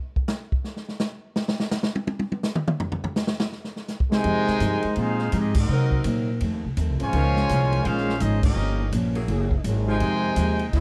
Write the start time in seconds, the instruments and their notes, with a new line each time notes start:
0.16 kick
0.28 snare, hi-hat pedal
0.52 kick
0.64 snare
0.76 snare
0.89 snare
0.99 snare, hi-hat pedal
1.36 snare
1.48 snare
1.60 snare
1.71 snare, hi-hat pedal
1.83 snare
1.95 high tom
2.07 high tom
2.19 high tom
2.32 high tom
2.43 snare, hi-hat pedal
2.55 mid tom
2.68 mid tom
2.80 floor tom
2.92 floor tom
3.04 floor tom
3.16 snare, hi-hat pedal
3.27 snare
3.40 snare
3.52 snare
3.64 snare
3.76 snare
3.88 snare, hi-hat pedal
4.00 kick
4.10 trombone section C3 D#3 G#3, trumpet section G5 G#5, snare
4.15 trumpet section D#4 C5
4.24 upright bass F2, steel-string acoustic guitar F3 G#3 D#4 G4, kick, ride
4.47 muted upright bass stroke, snare
4.60 upright bass G2, steel-string acoustic guitar F3 G#3 D#4 G4, kick, hi-hat pedal, ride
4.82 muted upright bass stroke, ride
4.96 upright bass A#2, steel-string acoustic guitar F3 G#3 D#4 G4, trombone section G#3 C4 F4, trumpet section G#4 C5, kick, ride
5.00 trumpet section D#4 F5
5.19 snare
5.32 upright bass G#2, steel-string acoustic guitar F3 G#3 D#4 G4, trombone section G#3 C4 D#4, kick, hi-hat pedal, ride
5.37 trumpet section C4 G4 G#4 D#5
5.54 trombone section F#3 A#3 D#4, kick, crash
5.59 trumpet section C4 F#4 A#4 D#5
5.68 steel-string acoustic guitar C3 F#3 A#3 D#4, upright bass C3, saxophone section F#3 C4 D#4 A#4
5.91 kick
6.04 upright bass A#2, steel-string acoustic guitar C3 F#3 A#3 D#4, hi-hat pedal, ride
6.40 upright bass F2, steel-string acoustic guitar F2 D#3 A3 C4, kick, ride
6.52 upright bass D#2
6.64 upright bass C2
6.77 upright bass D#2, steel-string acoustic guitar F2 D#3 A3 C4, kick, hi-hat pedal, ride
6.89 upright bass C2
6.99 upright bass A1, trombone section F3 G#3 C#4, trumpet section F4 C5, ride
7.03 trumpet section C#5 G#5
7.13 upright bass C#2, steel-string acoustic guitar A#2 D#3 G#3 C#4, saxophone section G#3 C#4 D#4 A#4, kick, ride
7.36 snare
7.49 upright bass C2, steel-string acoustic guitar A#2 D#3 G#3 C#4, kick, hi-hat pedal, ride
7.72 ride
7.83 upright bass A#1, steel-string acoustic guitar A#2 D#3 G#3, trombone section G#3 C#4 F4, trumpet section C#4 G#4 C5 F5, kick, ride
7.88 steel-string acoustic guitar C#4
7.97 snare
8.09 snare
8.18 upright bass G#1, steel-string acoustic guitar A#2, trombone section F3 G#3 D#4, trumpet section C#4 G#4 C5 D#5, kick, hi-hat pedal, ride
8.22 steel-string acoustic guitar D#3 G#3 C#4
8.42 trombone section F3 A#3 D#4, trumpet section C#4 G4 A#4 D#5, kick, crash
8.56 upright bass G1, steel-string acoustic guitar G2 F3 A#3
8.60 steel-string acoustic guitar C#4
8.92 upright bass A#1, steel-string acoustic guitar G2 F3 A#3 C#4, kick, hi-hat pedal, ride
9.15 saxophone section F#3 A#3 E4 G#4, ride
9.28 upright bass F#1, steel-string acoustic guitar F#3 A#3 E4 G#4, kick, ride
9.51 kick
9.64 upright bass G#1, steel-string acoustic guitar F#3 A#3 E4 G#4, hi-hat pedal, ride
9.87 trombone section C3 D#3 G#3, saxophone section F3 G#3 D#4 F4, trumpet section D#4 C5 G5 G#5
10.00 upright bass F2, steel-string acoustic guitar F3 G#3 D#4 G4, kick, ride
10.36 upright bass D#2, steel-string acoustic guitar F3 G#3 D#4 G4, kick, hi-hat pedal, ride
10.59 ride
10.71 upright bass D2, steel-string acoustic guitar D3, trombone section E4, trumpet section D#5, kick, snare, ride
10.75 steel-string acoustic guitar A#3 C4 F#4, trumpet section C4 F#4 A4 E5